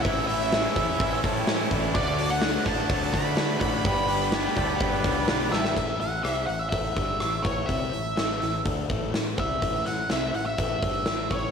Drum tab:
CC |----------------|----------------|----------------|x---------------|
HH |o-o-o-o-o-o-o-o-|o-o-o-o-o-o-o-o-|o-o-o-o-o-o-o---|--o-o-o-o-o-o-o-|
SD |----o-------o---|----o-----o-o---|----o-----o-o-oo|----r-------r---|
BD |o-----o-o-o---o-|o-----o-o-o---o-|o-----o-o-o-----|o-------o-o---o-|

CC |----------------|----------------|
HH |o-o-o-o-o-o-o-o-|o-o-o-o-o-o-o-o-|
SD |----o-o-----o---|--o-o-------o---|
BD |o-------o-o---o-|o-------o-o---o-|